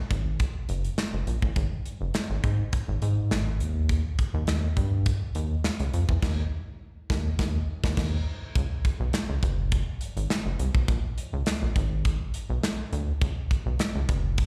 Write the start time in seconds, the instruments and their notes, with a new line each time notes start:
0.11 analog synth bass G#1, kick, closed hi-hat
0.40 kick, closed hi-hat
0.69 analog synth bass F#1, closed hi-hat
0.85 closed hi-hat
0.98 snare, clap, closed hi-hat
1.14 analog synth bass F#1
1.27 analog synth bass A#1, closed hi-hat
1.42 analog synth bass A1, kick
1.56 analog synth bass G#1, kick, closed hi-hat
1.86 closed hi-hat
2.01 analog synth bass F#1
2.14 snare, clap, closed hi-hat
2.30 analog synth bass G#1
2.44 analog synth bass G#2, kick, closed hi-hat
2.73 kick, closed hi-hat
2.88 analog synth bass G#1
3.02 analog synth bass G#2, closed hi-hat
3.31 analog synth bass G#1, snare, clap, closed hi-hat
3.60 analog synth bass D#2, closed hi-hat
3.89 kick, closed hi-hat
4.19 kick, closed hi-hat
4.34 analog synth bass D#2
4.47 analog synth bass D#2, snare, clap, closed hi-hat
4.77 analog synth bass G2, kick, closed hi-hat
5.06 kick, closed hi-hat
5.35 analog synth bass D#2, closed hi-hat
5.64 snare, clap, closed hi-hat
5.79 analog synth bass C#2, closed hi-hat
5.94 analog synth bass F2, closed hi-hat
6.09 analog synth bass E2, kick
6.22 analog synth bass D#2, kick, snare, crash
7.10 analog synth bass D#2, kick, snare
7.39 analog synth bass D#2, kick, snare
7.84 analog synth bass D#2, kick, snare
7.97 analog synth bass D#2, kick, snare, crash
8.55 analog synth bass C#2, kick, closed hi-hat
8.85 kick, closed hi-hat
9.00 analog synth bass B1
9.13 snare, clap, closed hi-hat
9.29 analog synth bass C#2
9.43 analog synth bass F#1, kick, closed hi-hat
9.72 kick, closed hi-hat
10.01 closed hi-hat
10.17 analog synth bass G#1, closed hi-hat
10.30 snare, clap, closed hi-hat
10.46 analog synth bass F#1
10.59 analog synth bass C2, closed hi-hat
10.75 analog synth bass B1, kick
10.88 analog synth bass A#1, kick, closed hi-hat
11.18 closed hi-hat
11.33 analog synth bass C#2
11.46 snare, clap, closed hi-hat
11.62 analog synth bass A#1
11.76 analog synth bass G#1, kick, closed hi-hat
12.05 kick, closed hi-hat
12.34 closed hi-hat
12.50 analog synth bass B1
12.63 snare, clap, closed hi-hat
12.93 analog synth bass D2, closed hi-hat
13.21 analog synth bass C#2, kick, closed hi-hat
13.51 kick, closed hi-hat
13.66 analog synth bass B1
13.79 snare, clap, closed hi-hat
13.95 analog synth bass C#2
14.09 analog synth bass F#1, kick, closed hi-hat
14.38 kick, closed hi-hat